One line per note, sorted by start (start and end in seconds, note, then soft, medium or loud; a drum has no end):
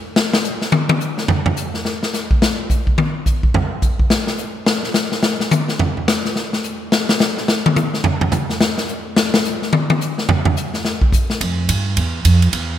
0.16 snare loud
0.33 snare loud
0.44 hi-hat pedal medium
0.62 snare medium
0.72 high tom loud
0.89 high tom loud
1.01 hi-hat pedal medium
1.18 snare soft
1.28 floor tom loud
1.46 floor tom loud
1.57 hi-hat pedal medium
1.74 snare soft
1.85 snare soft
2.03 snare medium
2.14 snare soft
2.14 hi-hat pedal medium
2.31 kick medium
2.42 snare loud
2.70 kick medium
2.70 hi-hat pedal medium
2.87 kick medium
2.98 high tom medium
3.26 kick medium
3.26 hi-hat pedal medium
3.43 kick medium
3.54 floor tom loud
3.82 kick medium
3.82 hi-hat pedal medium
3.99 kick medium
4.10 snare loud
4.27 snare medium
4.38 hi-hat pedal medium
4.66 snare loud
4.84 snare soft
4.94 snare medium
4.94 hi-hat pedal medium
5.12 snare soft
5.23 snare loud
5.40 snare medium
5.51 hi-hat pedal medium
5.51 high tom loud
5.68 snare soft
5.79 floor tom loud
5.97 floor tom soft
6.08 snare medium
6.08 hi-hat pedal medium
6.25 snare soft
6.36 snare medium
6.53 snare medium
6.64 hi-hat pedal medium
6.92 snare loud
7.09 snare loud
7.20 snare loud
7.20 hi-hat pedal medium
7.37 snare soft
7.48 snare loud
7.66 high tom loud
7.76 hi-hat pedal medium
7.76 high tom loud
7.94 snare soft
8.04 floor tom loud
8.21 floor tom loud
8.32 floor tom medium
8.32 hi-hat pedal medium
8.50 snare soft
8.61 snare loud
8.78 snare medium
8.88 hi-hat pedal medium
9.16 snare loud
9.34 snare loud
9.45 hi-hat pedal medium
9.62 snare soft
9.73 high tom loud
9.90 high tom loud
10.01 hi-hat pedal medium
10.18 snare soft
10.29 floor tom loud
10.45 floor tom loud
10.57 hi-hat pedal medium
10.74 snare soft
10.85 snare medium
11.01 kick medium
11.12 kick medium
11.12 hi-hat pedal medium
11.30 snare soft
11.41 11.68 F2 loud
11.41 kick soft
11.41 ride medium
11.69 11.96 G2 loud
11.69 kick soft
11.69 hi-hat pedal medium
11.69 ride medium
11.97 12.24 E2 medium
11.97 kick soft
11.97 ride medium
12.25 12.52 F2 loud
12.25 kick soft
12.25 hi-hat pedal medium
12.25 ride medium
12.42 ride medium
12.53 12.79 E2 medium
12.53 kick soft
12.53 ride medium